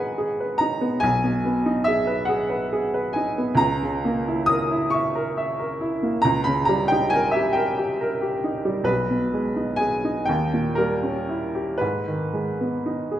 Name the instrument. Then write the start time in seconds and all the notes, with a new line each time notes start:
upright piano
Already playing: G#2 D#3 B3 D#4 G#4 B4 D#5 F#5 G#5
0.18 G#4
0.40 B4
0.58 D#4 A#5
0.81 B3
1.00 B1 G#5
1.24 B2
1.45 B3
1.66 D#4
1.84 G#4 E5
2.07 B4
2.25 G#4 F#5
2.50 B4
2.73 G#4
2.94 B4
3.13 D#4 G#5
3.38 B3
3.55 C#2 A#5
3.83 C#3
4.05 A#3
4.28 E4
4.46 A#4 D#6
4.71 E4
4.90 E5 C#6
5.15 A#4
5.37 E5
5.59 A#4
5.81 E4
6.03 A#3
6.22 C#2 A#5
6.44 C#3 B5
6.65 G3 A#5
6.88 D#4 G5
7.10 A#4 G#5
7.31 G4 E5
7.53 A#4 G5
7.78 G4
8.01 A#4
8.21 G4
8.44 D#4
8.65 G3
8.84 B1 B4
9.10 B2
9.33 G#3
9.56 D#4
9.76 G#4 G#5
10.04 D#4
10.26 D#2 G5
10.53 A#2
10.75 G3 A#4
11.03 C#4
11.29 E4
11.55 G4
11.78 G#2 B4
12.08 D#3
12.34 G#3
12.61 B3
12.86 D#4
13.11 G#4